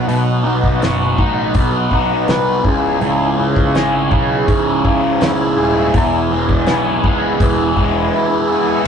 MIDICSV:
0, 0, Header, 1, 5, 480
1, 0, Start_track
1, 0, Tempo, 732601
1, 49, Time_signature, 4, 2, 24, 8
1, 5813, End_track
2, 0, Start_track
2, 0, Title_t, "Tonewheel organ"
2, 0, Program_c, 0, 16
2, 0, Note_on_c, 0, 59, 65
2, 0, Note_on_c, 0, 63, 60
2, 0, Note_on_c, 0, 66, 71
2, 1716, Note_off_c, 0, 59, 0
2, 1716, Note_off_c, 0, 63, 0
2, 1717, Note_off_c, 0, 66, 0
2, 1726, Note_on_c, 0, 68, 69
2, 1728, Note_on_c, 0, 64, 57
2, 1733, Note_on_c, 0, 61, 65
2, 3871, Note_off_c, 0, 61, 0
2, 3886, Note_on_c, 0, 59, 61
2, 5778, Note_off_c, 0, 68, 0
2, 5779, Note_off_c, 0, 64, 0
2, 5785, Note_off_c, 0, 59, 0
2, 5813, End_track
3, 0, Start_track
3, 0, Title_t, "Distorted electric guitar"
3, 0, Program_c, 1, 30
3, 53, Note_on_c, 1, 47, 63
3, 289, Note_on_c, 1, 63, 56
3, 539, Note_on_c, 1, 66, 65
3, 772, Note_off_c, 1, 63, 0
3, 779, Note_on_c, 1, 63, 69
3, 1020, Note_on_c, 1, 59, 74
3, 1253, Note_off_c, 1, 47, 0
3, 1253, Note_off_c, 1, 63, 0
3, 1261, Note_on_c, 1, 63, 63
3, 1499, Note_on_c, 1, 71, 74
3, 1736, Note_off_c, 1, 59, 0
3, 1736, Note_off_c, 1, 66, 0
3, 1736, Note_off_c, 1, 71, 0
3, 1736, Note_on_c, 1, 37, 61
3, 1737, Note_off_c, 1, 63, 0
3, 1967, Note_off_c, 1, 37, 0
3, 1974, Note_on_c, 1, 37, 65
3, 2212, Note_on_c, 1, 49, 61
3, 2454, Note_on_c, 1, 56, 69
3, 2688, Note_off_c, 1, 49, 0
3, 2696, Note_on_c, 1, 49, 67
3, 2931, Note_on_c, 1, 44, 76
3, 3164, Note_off_c, 1, 49, 0
3, 3172, Note_on_c, 1, 49, 60
3, 3174, Note_off_c, 1, 37, 0
3, 3410, Note_on_c, 1, 64, 77
3, 3642, Note_off_c, 1, 56, 0
3, 3650, Note_on_c, 1, 56, 57
3, 3891, Note_off_c, 1, 56, 0
3, 3891, Note_off_c, 1, 64, 0
3, 3892, Note_off_c, 1, 44, 0
3, 3892, Note_off_c, 1, 49, 0
3, 3895, Note_on_c, 1, 40, 60
3, 4136, Note_on_c, 1, 56, 63
3, 4376, Note_on_c, 1, 59, 66
3, 4601, Note_off_c, 1, 56, 0
3, 4609, Note_on_c, 1, 56, 71
3, 4855, Note_on_c, 1, 52, 66
3, 5088, Note_off_c, 1, 56, 0
3, 5091, Note_off_c, 1, 40, 0
3, 5096, Note_on_c, 1, 56, 63
3, 5335, Note_on_c, 1, 64, 72
3, 5564, Note_off_c, 1, 59, 0
3, 5572, Note_on_c, 1, 59, 52
3, 5809, Note_off_c, 1, 52, 0
3, 5809, Note_off_c, 1, 59, 0
3, 5810, Note_off_c, 1, 56, 0
3, 5810, Note_off_c, 1, 64, 0
3, 5813, End_track
4, 0, Start_track
4, 0, Title_t, "Picked electric bass"
4, 0, Program_c, 2, 34
4, 50, Note_on_c, 2, 35, 85
4, 265, Note_off_c, 2, 35, 0
4, 292, Note_on_c, 2, 35, 74
4, 506, Note_off_c, 2, 35, 0
4, 531, Note_on_c, 2, 30, 81
4, 746, Note_off_c, 2, 30, 0
4, 775, Note_on_c, 2, 33, 85
4, 988, Note_off_c, 2, 33, 0
4, 1016, Note_on_c, 2, 35, 91
4, 1229, Note_off_c, 2, 35, 0
4, 1252, Note_on_c, 2, 35, 92
4, 1467, Note_off_c, 2, 35, 0
4, 1494, Note_on_c, 2, 36, 80
4, 1708, Note_off_c, 2, 36, 0
4, 1733, Note_on_c, 2, 25, 85
4, 1948, Note_off_c, 2, 25, 0
4, 1976, Note_on_c, 2, 25, 77
4, 2189, Note_off_c, 2, 25, 0
4, 2215, Note_on_c, 2, 25, 80
4, 2429, Note_off_c, 2, 25, 0
4, 2457, Note_on_c, 2, 32, 80
4, 2670, Note_off_c, 2, 32, 0
4, 2694, Note_on_c, 2, 35, 87
4, 2908, Note_off_c, 2, 35, 0
4, 2936, Note_on_c, 2, 25, 94
4, 3150, Note_off_c, 2, 25, 0
4, 3175, Note_on_c, 2, 25, 89
4, 3389, Note_off_c, 2, 25, 0
4, 3415, Note_on_c, 2, 25, 84
4, 3629, Note_off_c, 2, 25, 0
4, 3653, Note_on_c, 2, 27, 85
4, 3868, Note_off_c, 2, 27, 0
4, 3893, Note_on_c, 2, 28, 77
4, 4108, Note_off_c, 2, 28, 0
4, 4132, Note_on_c, 2, 28, 83
4, 4347, Note_off_c, 2, 28, 0
4, 4369, Note_on_c, 2, 35, 71
4, 4585, Note_off_c, 2, 35, 0
4, 4610, Note_on_c, 2, 25, 81
4, 4825, Note_off_c, 2, 25, 0
4, 4847, Note_on_c, 2, 28, 90
4, 5063, Note_off_c, 2, 28, 0
4, 5086, Note_on_c, 2, 28, 93
4, 5302, Note_off_c, 2, 28, 0
4, 5813, End_track
5, 0, Start_track
5, 0, Title_t, "Drums"
5, 58, Note_on_c, 9, 46, 48
5, 124, Note_off_c, 9, 46, 0
5, 416, Note_on_c, 9, 36, 75
5, 481, Note_off_c, 9, 36, 0
5, 538, Note_on_c, 9, 46, 49
5, 544, Note_on_c, 9, 38, 96
5, 603, Note_off_c, 9, 46, 0
5, 609, Note_off_c, 9, 38, 0
5, 775, Note_on_c, 9, 36, 76
5, 841, Note_off_c, 9, 36, 0
5, 1011, Note_on_c, 9, 46, 53
5, 1014, Note_on_c, 9, 36, 108
5, 1077, Note_off_c, 9, 46, 0
5, 1080, Note_off_c, 9, 36, 0
5, 1253, Note_on_c, 9, 36, 69
5, 1319, Note_off_c, 9, 36, 0
5, 1494, Note_on_c, 9, 46, 46
5, 1500, Note_on_c, 9, 38, 104
5, 1560, Note_off_c, 9, 46, 0
5, 1566, Note_off_c, 9, 38, 0
5, 1733, Note_on_c, 9, 36, 87
5, 1799, Note_off_c, 9, 36, 0
5, 1973, Note_on_c, 9, 46, 42
5, 2039, Note_off_c, 9, 46, 0
5, 2334, Note_on_c, 9, 36, 78
5, 2400, Note_off_c, 9, 36, 0
5, 2457, Note_on_c, 9, 46, 44
5, 2463, Note_on_c, 9, 38, 97
5, 2523, Note_off_c, 9, 46, 0
5, 2529, Note_off_c, 9, 38, 0
5, 2695, Note_on_c, 9, 36, 83
5, 2761, Note_off_c, 9, 36, 0
5, 2936, Note_on_c, 9, 36, 100
5, 2939, Note_on_c, 9, 46, 45
5, 3002, Note_off_c, 9, 36, 0
5, 3005, Note_off_c, 9, 46, 0
5, 3175, Note_on_c, 9, 36, 74
5, 3241, Note_off_c, 9, 36, 0
5, 3414, Note_on_c, 9, 46, 50
5, 3420, Note_on_c, 9, 38, 116
5, 3479, Note_off_c, 9, 46, 0
5, 3485, Note_off_c, 9, 38, 0
5, 3891, Note_on_c, 9, 46, 49
5, 3893, Note_on_c, 9, 36, 99
5, 3956, Note_off_c, 9, 46, 0
5, 3958, Note_off_c, 9, 36, 0
5, 4252, Note_on_c, 9, 36, 71
5, 4317, Note_off_c, 9, 36, 0
5, 4367, Note_on_c, 9, 46, 45
5, 4373, Note_on_c, 9, 38, 94
5, 4432, Note_off_c, 9, 46, 0
5, 4438, Note_off_c, 9, 38, 0
5, 4611, Note_on_c, 9, 36, 85
5, 4677, Note_off_c, 9, 36, 0
5, 4850, Note_on_c, 9, 36, 107
5, 4850, Note_on_c, 9, 46, 50
5, 4915, Note_off_c, 9, 36, 0
5, 4916, Note_off_c, 9, 46, 0
5, 5089, Note_on_c, 9, 36, 71
5, 5155, Note_off_c, 9, 36, 0
5, 5813, End_track
0, 0, End_of_file